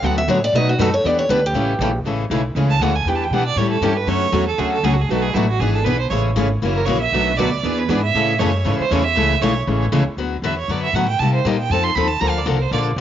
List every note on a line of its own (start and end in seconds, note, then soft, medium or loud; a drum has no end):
0.02 0.27 D2 medium
0.02 0.20 D3 medium
0.02 0.21 F#3 medium
0.02 0.20 A3 medium
0.02 0.21 B3 medium
0.02 0.21 D4 medium
0.02 0.21 F#4 medium
0.02 0.21 A4 medium
0.02 0.21 B4 medium
0.02 0.17 F#5 medium
0.18 0.28 E5 medium
0.27 0.52 A2 medium
0.27 0.38 D3 medium
0.27 0.38 F#3 medium
0.27 0.38 A3 loud
0.27 0.38 B3 loud
0.27 0.38 D4 loud
0.27 0.39 F#4 medium
0.27 0.38 A4 loud
0.27 0.39 B4 loud
0.27 0.42 C#5 medium
0.44 0.54 D5 medium
0.53 0.77 B2 medium
0.53 0.72 B2 medium
0.53 0.72 F#3 medium
0.53 0.72 A3 medium
0.53 0.72 D#4 medium
0.53 0.72 F#4 medium
0.53 0.72 B4 medium
0.53 0.68 D#5 medium
0.69 0.81 F#4 medium
0.78 1.03 F#2 medium
0.78 0.89 B2 loud
0.78 0.89 F#3 loud
0.78 0.89 A3 medium
0.78 0.89 D#4 loud
0.78 0.89 F#4 loud
0.78 0.93 A4 medium
0.78 0.89 B4 loud
0.94 1.06 C#5 loud
1.04 1.28 E2 medium
1.04 1.22 E3 medium
1.04 1.22 G3 medium
1.04 1.23 B3 medium
1.04 1.23 D4 medium
1.04 1.22 E4 medium
1.04 1.23 G4 medium
1.04 1.22 B4 medium
1.04 1.18 D5 medium
1.19 1.29 C#5 medium
1.29 1.53 D2 loud
1.29 1.39 E3 medium
1.29 1.39 G3 loud
1.29 1.39 B3 medium
1.29 1.40 D4 loud
1.29 1.40 E4 loud
1.29 1.39 G4 loud
1.29 1.43 B4 loud
1.29 1.40 B4 loud
1.46 1.97 G4 medium
1.53 1.78 A1 medium
1.53 1.72 C#3 medium
1.53 1.73 E3 medium
1.53 1.73 G3 medium
1.53 1.73 A3 medium
1.53 1.73 C#4 medium
1.53 1.73 E4 medium
1.53 1.73 G4 medium
1.53 1.73 A4 medium
1.79 2.04 A#1 loud
1.79 1.90 C#3 medium
1.79 1.91 E3 loud
1.79 1.90 G3 medium
1.79 1.91 A3 medium
1.79 1.91 C#4 medium
1.79 1.90 E4 loud
1.79 1.91 G4 loud
1.79 1.91 A4 loud
2.04 2.29 A1 medium
2.04 2.23 C#3 medium
2.04 2.24 E3 medium
2.04 2.23 G#3 medium
2.04 2.24 A3 medium
2.04 2.24 C#4 medium
2.04 2.23 E4 medium
2.04 2.24 G#4 medium
2.04 2.23 A4 medium
2.30 2.54 B1 medium
2.30 2.41 C#3 loud
2.30 2.41 E3 medium
2.30 2.41 G#3 medium
2.30 2.41 A3 medium
2.30 2.41 C#4 medium
2.30 2.41 E4 medium
2.30 2.41 G#4 medium
2.30 2.41 A4 medium
2.55 2.79 C#2 medium
2.55 2.74 C#3 medium
2.55 2.74 E3 medium
2.55 2.74 G#3 medium
2.55 2.74 A3 medium
2.55 2.74 C#4 medium
2.55 2.74 E4 medium
2.55 2.74 G#4 medium
2.55 2.74 A4 medium
2.70 2.83 A5 loud
2.80 3.04 D2 loud
2.80 2.92 C#3 medium
2.80 2.92 E3 medium
2.80 2.92 G#3 loud
2.80 2.92 A3 loud
2.80 2.92 C#4 medium
2.80 2.92 E4 medium
2.80 2.92 G#4 medium
2.80 2.92 A4 loud
2.80 2.97 F#5 medium
2.95 3.10 G#5 medium
3.05 3.30 E2 medium
3.05 3.25 E3 medium
3.05 3.25 B3 medium
3.05 3.25 D4 medium
3.05 3.26 G4 medium
3.05 3.17 G5 medium
3.09 3.26 G3 medium
3.09 3.26 E4 medium
3.09 3.26 B4 medium
3.15 3.26 A5 medium
3.24 3.35 G5 medium
3.31 3.56 B2 medium
3.31 3.42 E3 medium
3.31 3.43 G3 loud
3.31 3.43 B3 medium
3.31 3.43 D4 medium
3.31 3.43 E4 medium
3.31 3.43 G4 medium
3.31 3.43 B4 medium
3.31 3.46 F#5 medium
3.46 3.59 D5 medium
3.56 3.81 A2 medium
3.56 3.76 E3 medium
3.56 3.76 G3 medium
3.56 3.76 C#4 medium
3.56 3.76 E4 medium
3.56 3.76 A4 medium
3.56 3.70 C#5 medium
3.71 3.85 A4 medium
3.81 4.06 G2 medium
3.81 3.92 E3 medium
3.81 3.93 G3 medium
3.81 3.93 C#4 loud
3.81 3.93 E4 loud
3.81 3.99 G4 medium
3.81 3.93 A4 medium
3.97 4.10 B4 medium
4.07 4.32 F#2 medium
4.07 4.26 D3 medium
4.07 4.26 F#3 medium
4.07 4.26 A3 medium
4.07 4.26 C#4 medium
4.07 4.26 F#4 medium
4.07 4.26 A4 medium
4.07 4.47 C#5 loud
4.32 4.58 E2 medium
4.32 4.43 D3 medium
4.32 4.43 F#3 medium
4.32 4.43 A3 medium
4.32 4.44 C#4 loud
4.32 4.44 F#4 medium
4.32 4.44 A4 loud
4.48 4.60 A4 medium
4.58 4.83 D2 medium
4.58 4.76 D3 medium
4.58 4.77 F#3 medium
4.58 4.77 A3 medium
4.58 4.77 C#4 medium
4.58 4.77 F#4 medium
4.58 4.72 G#4 medium
4.58 4.77 A4 medium
4.72 4.86 A4 loud
4.83 5.09 C#2 loud
4.83 4.94 D3 medium
4.83 4.94 F#3 medium
4.83 4.94 A3 medium
4.83 4.94 C#4 medium
4.83 4.95 F#4 medium
4.83 4.95 G#4 medium
4.83 4.95 A4 loud
4.93 5.03 F#4 medium
5.01 5.11 G#4 medium
5.09 5.34 B1 medium
5.09 5.28 B2 medium
5.09 5.28 F#3 medium
5.09 5.29 A3 medium
5.09 5.29 D4 medium
5.09 5.29 F#4 medium
5.09 5.24 A4 medium
5.09 5.28 B4 medium
5.22 5.36 G#4 medium
5.34 5.59 A1 medium
5.34 5.46 B2 medium
5.34 5.46 F#3 medium
5.34 5.46 A3 loud
5.34 5.46 D4 medium
5.34 5.48 E4 medium
5.34 5.46 F#4 medium
5.34 5.45 B4 loud
5.48 5.62 F#4 medium
5.60 5.84 G#1 medium
5.60 5.79 E3 medium
5.60 5.79 B3 medium
5.60 5.79 D4 medium
5.60 5.72 G#4 medium
5.60 5.80 G#4 medium
5.60 5.79 B4 medium
5.73 5.86 A4 medium
5.85 6.10 B1 loud
5.85 5.96 E3 medium
5.85 5.96 B3 loud
5.85 5.96 D4 medium
5.85 5.96 G#4 loud
5.85 5.99 B4 medium
5.85 5.97 B4 loud
5.99 6.09 C5 medium
6.10 6.36 A1 medium
6.10 6.29 C#3 medium
6.10 6.29 E3 medium
6.10 6.30 G#3 medium
6.10 6.29 A3 medium
6.10 6.30 C#4 medium
6.10 6.30 E4 medium
6.10 6.30 G#4 medium
6.10 6.30 A4 medium
6.10 6.19 C#5 medium
6.36 6.61 G#1 loud
6.36 6.46 C#3 loud
6.36 6.47 E3 medium
6.36 6.48 G#3 medium
6.36 6.47 A3 medium
6.36 6.47 C#4 loud
6.36 6.48 E4 medium
6.36 6.47 G#4 loud
6.36 6.48 A4 loud
6.62 6.86 F#1 medium
6.62 6.80 C#3 medium
6.62 6.80 E3 medium
6.62 6.81 F#3 medium
6.62 6.80 A#3 medium
6.62 6.81 C#4 medium
6.62 6.82 E4 medium
6.62 6.81 F#4 medium
6.62 6.82 A#4 medium
6.76 6.87 A#4 medium
6.86 7.12 A#1 loud
6.86 6.97 C#3 medium
6.86 6.97 E3 medium
6.86 6.98 F#3 medium
6.86 6.98 A#3 loud
6.86 6.98 C#4 loud
6.86 6.98 E4 medium
6.86 6.98 F#4 medium
6.86 6.99 A#4 loud
6.86 7.00 C#5 medium
7.01 7.38 E5 loud
7.12 7.37 B1 medium
7.12 7.31 B2 medium
7.12 7.32 F#3 medium
7.12 7.32 A3 medium
7.12 7.32 D4 medium
7.12 7.32 F#4 medium
7.12 7.32 B4 medium
7.37 7.63 D2 medium
7.37 7.49 B2 medium
7.37 7.48 F#3 medium
7.37 7.49 A3 loud
7.37 7.49 D4 loud
7.37 7.49 F#4 loud
7.37 7.49 B4 loud
7.37 7.80 D5 medium
7.63 7.88 E2 medium
7.63 7.82 E3 medium
7.63 7.82 B3 medium
7.63 7.82 D4 medium
7.63 7.83 G#4 medium
7.63 7.82 B4 medium
7.79 7.91 B4 medium
7.88 8.13 G#2 loud
7.88 8.00 E3 medium
7.88 8.00 B3 medium
7.88 8.00 D4 medium
7.88 8.00 G#4 loud
7.88 8.00 B4 loud
7.88 8.02 D5 medium
8.03 8.40 E5 loud
8.14 8.38 A2 medium
8.14 8.33 C#3 medium
8.14 8.33 E3 medium
8.14 8.33 G#3 medium
8.14 8.33 A3 medium
8.14 8.34 C#4 medium
8.14 8.33 E4 medium
8.14 8.34 G#4 medium
8.14 8.33 A4 medium
8.39 8.64 F#2 loud
8.39 8.50 C#3 loud
8.39 8.50 E3 medium
8.39 8.50 G#3 loud
8.39 8.50 A3 loud
8.39 8.51 C#4 medium
8.39 8.50 E4 loud
8.39 8.51 G#4 loud
8.39 8.50 A4 loud
8.39 8.78 C#5 medium
8.65 8.78 G#2 medium
8.65 8.83 C#3 medium
8.65 8.83 E3 medium
8.65 8.84 G#3 medium
8.65 8.84 A3 medium
8.65 8.84 C#4 medium
8.65 8.84 E4 medium
8.65 8.84 G#4 medium
8.65 8.84 A4 medium
8.79 8.93 C5 loud
8.79 muted upright bass stroke soft
8.91 9.15 E2 loud
8.91 9.01 C#3 medium
8.91 9.01 E3 medium
8.91 9.02 G#3 medium
8.91 9.02 A3 medium
8.91 9.02 C#4 loud
8.91 9.02 E4 loud
8.91 9.02 G#4 loud
8.91 9.02 A4 loud
8.91 9.05 C#5 loud
9.04 9.43 E5 loud
9.15 9.41 C#2 medium
9.15 9.34 C#3 medium
9.15 9.34 E3 medium
9.15 9.35 G#3 medium
9.15 9.35 A3 medium
9.15 9.34 C#4 medium
9.15 9.35 E4 medium
9.15 9.35 G#4 medium
9.15 9.35 A4 medium
9.41 9.66 B1 medium
9.41 9.52 C#3 loud
9.41 9.52 E3 medium
9.41 9.52 G#3 medium
9.41 9.52 A3 loud
9.41 9.52 C#4 loud
9.41 9.52 E4 medium
9.41 9.53 G#4 loud
9.41 9.53 A4 loud
9.41 9.81 C#5 loud
9.67 9.91 A1 loud
9.67 9.85 C#3 medium
9.67 9.85 E3 medium
9.67 9.86 G#3 medium
9.67 9.85 A3 medium
9.67 9.85 C#4 medium
9.67 9.86 E4 medium
9.67 9.85 G#4 medium
9.67 9.86 A4 medium
9.92 10.05 C#2 loud
9.92 10.02 C#3 medium
9.92 10.02 E3 medium
9.92 10.02 G#3 loud
9.92 10.03 A3 loud
9.92 10.03 C#4 medium
9.92 10.03 E4 loud
9.92 10.03 G#4 loud
9.92 10.03 A4 loud
10.06 muted upright bass stroke soft
10.17 10.42 D2 medium
10.17 10.36 D3 medium
10.17 10.36 F#3 medium
10.17 10.36 B3 medium
10.17 10.36 F#4 medium
10.17 10.37 B4 medium
10.42 10.67 E2 medium
10.42 10.53 D3 medium
10.42 10.54 F#3 medium
10.42 10.54 B3 medium
10.42 10.54 F#4 medium
10.42 10.54 B4 loud
10.42 10.57 E5 medium
10.58 10.73 C#5 medium
10.68 10.92 F#2 medium
10.68 10.87 D3 medium
10.68 10.87 F#3 medium
10.68 10.87 B3 medium
10.68 10.87 F#4 medium
10.68 10.88 B4 medium
10.68 10.82 D5 medium
10.83 10.96 E5 loud
10.93 11.18 A2 loud
10.93 11.05 D3 medium
10.93 11.05 F#3 loud
10.93 11.05 B3 medium
10.93 11.05 F#4 medium
10.93 11.06 B4 medium
10.93 11.08 F#5 medium
11.08 11.21 G5 medium
11.19 11.44 C3 medium
11.19 11.39 C3 medium
11.19 11.39 G3 medium
11.19 11.39 A#3 medium
11.19 11.39 D#4 medium
11.19 11.39 G4 medium
11.19 11.33 A5 medium
11.34 11.48 C5 medium
11.45 11.69 A#2 medium
11.45 11.55 C3 medium
11.45 11.56 G3 medium
11.45 11.56 A#3 loud
11.45 11.56 D#4 loud
11.45 11.56 G4 loud
11.45 11.58 D#5 medium
11.59 11.73 G5 loud
11.70 11.95 F2 medium
11.70 11.89 F3 medium
11.70 11.89 C4 medium
11.70 11.90 D#4 medium
11.70 11.90 A4 medium
11.70 11.85 A5 loud
11.84 11.97 C6 loud
11.95 12.20 D#2 medium
11.95 12.06 F3 medium
11.95 12.06 C4 loud
11.95 12.07 D#4 medium
11.95 12.07 A4 medium
11.95 12.09 B5 loud
12.08 12.22 A5 loud
12.21 12.45 D2 medium
12.21 12.39 D3 medium
12.21 12.39 F3 medium
12.21 12.39 A#3 medium
12.21 12.39 D4 medium
12.21 12.40 A4 medium
12.21 12.31 A#5 loud
12.30 12.40 F5 medium
12.38 12.48 D5 medium
12.46 12.71 C2 medium
12.46 12.56 D3 medium
12.46 12.57 F3 medium
12.46 12.57 A#3 loud
12.46 12.57 D4 loud
12.46 12.57 A4 loud
12.46 12.63 A#4 medium
12.62 12.72 C5 loud
12.71 12.96 A#1 loud
12.71 12.90 D3 medium
12.71 12.91 F3 medium
12.71 12.90 A#3 medium
12.71 12.91 D4 medium
12.71 12.91 A4 medium
12.71 12.81 D5 medium
12.96 13.01 C2 medium